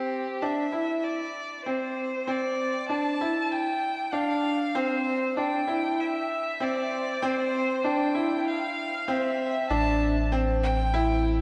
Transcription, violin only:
Already playing: G4
0.42 E5
1.04 D5
1.65 C5
2.28 D5
2.89 A5
3.52 G5
4.14 F5
4.75 C5
5.39 G5
6.00 E5
6.62 D5
7.24 C5
7.85 G5
8.47 F5
9.10 E5
9.70 A5
10.63 G5

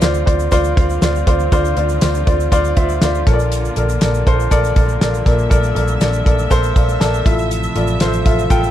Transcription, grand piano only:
Already playing: D3 C5 D5
0.00 F4 C5 D5
0.26 F4 C5 D5
0.52 F4 C5 D5
0.77 F4 C5 F5
1.02 F4 C5 D5
1.27 F4 C5 D5
1.52 D3 F4 C5 D5
1.77 F4 C5 D5
2.02 F4 C5 D5
2.26 F4 C5 D5
2.52 F4 C5 D5
2.77 F4 C5 E5
3.02 F4 C5 D5
3.27 A#2 A4 A#4 C#5
3.33 D5
3.76 A4 A#4 D5
4.01 A4 A#4 D5
4.27 A4 A#4 C5
4.51 A4 A#4 D5
4.76 A4 A#4 D5
5.01 A4 A#4 D5
5.26 A#2 A4 A#4 D5
5.50 A4 A#4 D5
5.75 A4 A#4 D5
6.01 A4 A#4 D5
6.26 A4 A#4 D5
6.50 A4 A#4 C5
6.76 A4 A#4 D5 F5
7.00 A4 A#4 D5 A5
7.26 A2 F4 A4 E5
7.75 F4 A4 D5
8.00 F4 A4 C5
8.25 F4 A4 E5
8.50 F4 A4 G5

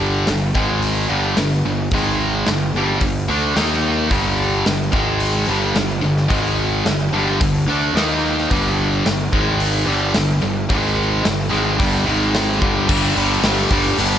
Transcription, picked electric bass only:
Already playing: G1
0.29 G1
0.55 G#1
1.10 G1
1.38 G1
1.65 G1
1.92 G#1
2.47 G1
2.74 G1
3.01 G1
3.29 D2
3.56 D#2
4.11 G1
4.67 G1
4.93 G#1
5.48 G1
5.75 G1
6.04 G1
6.30 G#1
6.85 G1
7.13 G1
7.41 G1
7.67 D2
7.93 D#2
8.51 G1
9.05 G1
9.32 G#1
9.87 G1
10.15 G1
10.43 G1
10.70 G#1
11.26 G1
11.53 G#1
11.80 G1
12.07 G#1
12.62 G1
12.89 G1
13.16 G1
13.43 G1
13.71 G1
13.98 G1

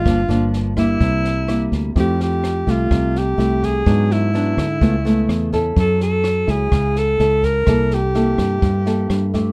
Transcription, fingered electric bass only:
0.05 G1
0.29 G1
1.01 C2
1.72 D2
1.96 F2
2.67 C2
2.91 C2
3.38 C2
3.86 G#2
4.57 D3
4.81 C#2
5.29 E2
5.76 F#2
6.48 C#2
6.72 C#2
7.20 C#2
7.67 C2
8.38 G2
8.62 G2
9.10 G2

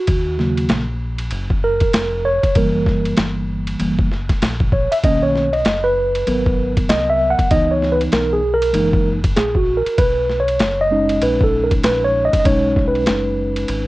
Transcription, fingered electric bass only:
0.08 D#2
0.70 A#1
1.32 F#1
1.94 F1
2.56 F#1
3.18 G1
3.80 F#1
4.42 A#1
5.04 B1
5.66 F#1
6.28 G#1
6.89 C2
7.51 C#2
8.13 B1
8.75 F#1
9.36 A#1
9.98 B1
10.60 F#1
11.22 A#1
11.84 A#1
12.46 B1
13.08 F#1
13.69 G#1

